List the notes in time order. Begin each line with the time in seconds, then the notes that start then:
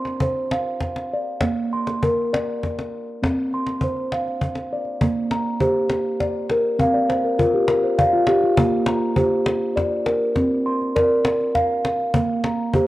Already playing: C4 C6
0.05 cajon slap
0.20 C5, cajon bass
0.51 F5, cajon slap
0.80 cajon bass, cajon slap
0.96 cajon slap
1.13 D5
1.40 A#3, cajon bass, cajon slap
1.56 cajon slap
1.73 C6
1.87 cajon slap
2.03 A#4, cajon bass
2.33 D5, cajon slap
2.64 cajon bass, cajon slap
2.79 cajon slap
3.23 C4, cajon bass, cajon slap
3.38 cajon slap
3.53 C6, cajon slap
3.67 cajon slap
3.81 C5, cajon bass
3.97 cajon slap
4.12 F5, cajon slap
4.28 cajon slap
4.41 cajon bass
4.55 cajon slap
4.73 D5
4.85 cajon slap
5.01 A#3, cajon bass
5.31 A#5, cajon slap
5.60 G4 C5, cajon bass
5.90 cajon slap
6.20 D5, cajon bass, cajon slap
6.50 A#4, cajon slap
6.79 C4 F5, cajon bass
6.94 D5
7.09 C5, cajon slap
7.24 A#4
7.39 F4 A#4, cajon bass
7.54 G4
7.68 A#4, cajon slap
7.83 C5
7.98 D5 F5, cajon bass
8.13 F4
8.27 G4, cajon slap
8.43 F4
8.57 A#3, cajon bass
8.86 A#5, cajon slap
9.16 G4 C5, cajon bass
9.46 cajon slap
9.76 D5, cajon bass, cajon slap
10.06 A#4, cajon slap
10.36 C4, cajon bass, cajon slap
10.66 C6
10.82 cajon slap
10.96 A#4 D5, cajon bass, cajon slap
11.25 cajon slap
11.41 cajon slap
11.55 F5, cajon bass, cajon slap
11.85 cajon slap
12.00 cajon slap
12.14 A#3, cajon bass
12.44 A#5, cajon slap
12.74 G4 C5, cajon bass